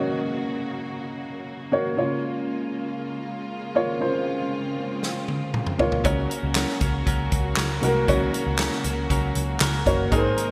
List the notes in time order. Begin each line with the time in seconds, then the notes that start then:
Already playing: C#3 F#3 A#3 F#4 C#5 D#5
1.72 A#3 F#4 C#5
1.97 C#3 G#3 A#3 F4 C#5
3.75 A#3 F4 C#5
4.00 C#3 A#3 C4 F4 C5
5.03 snare
5.28 high tom
5.54 mid tom
5.67 mid tom
5.78 A#3 F4 C#5, floor tom
5.92 floor tom
6.04 C#2 C#3 F#3 A#3 C#4 F#4 A#4 C#5, kick, closed hi-hat
6.30 C#4 F#4 A#4, closed hi-hat
6.43 C#2
6.55 C#3 F#3 C#4 F#4 A#4, snare, clap, closed hi-hat
6.69 snare
6.80 C#2 C#4 F#4 A#4, kick, closed hi-hat
7.06 C#2 F#3 C#4 F#4 A#4, kick, closed hi-hat
7.32 C#2, kick, closed hi-hat
7.57 C#2 C#3 F#3 C#4 F#4 A#4, snare, clap, closed hi-hat
7.82 C2 A#3 C#4 F#4 A#4, closed hi-hat
8.08 C#2 C#3 F#3 A#3 C#4 F#4 A#4 C#5, kick, closed hi-hat
8.33 C#4 F#4 A#4, closed hi-hat
8.47 C#2
8.59 C#3 F#3 C#4 F#4 A#4, snare, clap, closed hi-hat
8.72 snare
8.84 C#2 C#4 F#4 A#4, closed hi-hat
9.09 C#2 F#3 C#4 F#4 A#4, kick, closed hi-hat
9.35 C#2, closed hi-hat
9.60 C#2 C#3 F#3 C#4 F#4 A#4, snare, clap, closed hi-hat
9.86 F#1 A#3 C#4 F#4 A#4 C#5, kick, closed hi-hat
10.11 G#1 G#2 C3 D#3 G#3 A#3 C4 D#4 G#4 A#4, kick, closed hi-hat
10.19 C5
10.37 G#3 C4 D#4 A#4, closed hi-hat